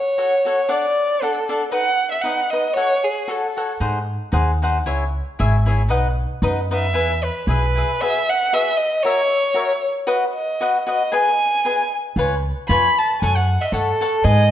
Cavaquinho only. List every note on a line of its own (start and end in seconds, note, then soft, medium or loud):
0.18 0.34 F#4 medium
0.18 0.34 A4 soft
0.18 0.34 C#5 medium
0.18 0.35 F#5 soft
0.45 0.59 F#4 soft
0.45 0.60 A4 medium
0.45 0.60 C#5 medium
0.45 0.60 F#5 medium
0.68 0.85 D4 medium
0.68 0.85 A4 medium
0.68 0.86 D5 medium
0.68 0.86 F#5 medium
1.22 1.38 D4 soft
1.22 1.38 A4 medium
1.22 1.38 D5 medium
1.22 1.39 F#5 medium
1.49 1.63 D4 medium
1.49 1.63 A4 medium
1.49 1.63 D5 medium
1.49 1.64 F#5 soft
1.72 1.89 D#4 soft
1.72 1.89 B4 soft
1.72 1.89 D#5 medium
1.72 1.89 F#5 medium
2.24 2.40 D#4 medium
2.24 2.41 B4 soft
2.24 2.41 D#5 medium
2.24 2.42 F#5 medium
2.53 2.67 D#4 soft
2.53 2.67 B4 soft
2.53 2.67 D#5 medium
2.53 2.67 F#5 medium
2.76 2.92 F#4 soft
2.76 2.93 A4 medium
2.76 2.93 C#5 medium
2.76 2.93 F#5 medium
3.28 3.45 F#4 soft
3.28 3.45 A4 soft
3.28 3.46 C#5 soft
3.28 3.46 F#5 soft
3.57 3.71 F#4 soft
3.57 3.72 A4 soft
3.57 3.72 C#5 soft
3.57 3.72 F#5 soft
3.80 3.98 D#4 medium
3.80 3.98 G#4 medium
3.80 3.98 C5 medium
3.80 3.98 F#5 medium
4.32 4.50 D#4 medium
4.32 4.51 G#4 medium
4.32 4.50 C5 medium
4.32 4.51 F#5 soft
4.62 4.77 D#4 medium
4.62 4.77 G#4 soft
4.62 4.77 C5 medium
4.62 4.77 F#5 medium
4.86 5.03 E4 medium
4.86 5.03 G#4 soft
4.86 5.03 C#5 medium
4.86 5.04 E5 medium
5.39 5.55 E4 medium
5.39 5.56 G#4 medium
5.39 5.56 C#5 medium
5.39 5.56 E5 medium
5.66 5.81 E4 medium
5.66 5.81 G#4 medium
5.66 5.81 C#5 medium
5.66 5.81 E5 medium
5.89 6.06 D#4 medium
5.89 6.07 B4 medium
5.89 6.07 D#5 medium
5.89 6.07 F#5 medium
6.43 6.59 D#4 medium
6.43 6.59 B4 medium
6.43 6.60 D#5 medium
6.43 6.59 F#5 medium
6.71 6.85 D#4 soft
6.71 6.85 B4 medium
6.71 6.85 D#5 medium
6.71 6.86 F#5 medium
6.94 7.11 E4 medium
6.94 7.11 G#4 medium
6.94 7.11 B4 medium
6.94 7.12 E5 medium
7.48 7.64 E4 soft
7.48 7.65 G#4 soft
7.48 7.65 B4 medium
7.48 7.65 E5 medium
7.75 7.90 E4 soft
7.75 7.91 G#4 medium
7.75 7.91 B4 soft
7.75 7.91 E5 medium
8.01 8.17 F#4 soft
8.01 8.18 G#4 medium
8.01 8.18 B4 medium
8.01 8.18 E5 soft
8.53 8.69 F#4 soft
8.53 8.69 G#4 medium
8.53 8.69 B4 medium
8.53 8.70 E5 medium
9.04 9.21 F#4 medium
9.04 9.21 A#4 medium
9.04 9.21 C#5 medium
9.04 9.21 E5 medium
9.54 9.71 F#4 medium
9.54 9.72 A#4 medium
9.54 9.72 C#5 medium
9.54 9.72 E5 medium
10.07 10.24 F#4 medium
10.07 10.24 B4 medium
10.07 10.24 D#5 medium
10.07 10.24 F#5 medium
10.61 10.76 F#4 medium
10.61 10.77 B4 medium
10.61 10.77 D#5 medium
10.61 10.77 F#5 medium
10.87 11.01 F#4 soft
10.87 11.01 B4 soft
10.87 11.02 D#5 medium
10.87 11.02 F#5 medium
11.12 11.28 G#4 medium
11.12 11.28 B4 medium
11.12 11.29 D#5 soft
11.12 11.28 G#5 medium
11.65 11.81 G#4 soft
11.65 11.81 B4 soft
11.65 11.81 D#5 medium
11.65 11.82 G#5 medium
12.17 12.34 F4 medium
12.17 12.34 B4 medium
12.17 12.34 C#5 medium
12.17 12.34 G#5 medium
12.69 12.86 F4 medium
12.69 12.87 B4 medium
12.69 12.86 C#5 medium
12.69 12.87 G#5 medium
13.23 13.39 A4 medium
13.23 13.39 C#5 medium
13.23 13.39 F#5 medium
13.23 13.39 A5 medium
13.73 13.90 A4 soft
13.73 13.90 C#5 medium
13.73 13.90 F#5 medium
13.73 13.91 A5 medium
14.01 14.15 A4 medium
14.01 14.16 C#5 medium
14.01 14.16 F#5 medium
14.01 14.16 A5 medium
14.24 14.41 G#4 medium
14.24 14.42 B4 medium
14.24 14.41 D#5 medium
14.24 14.42 G#5 medium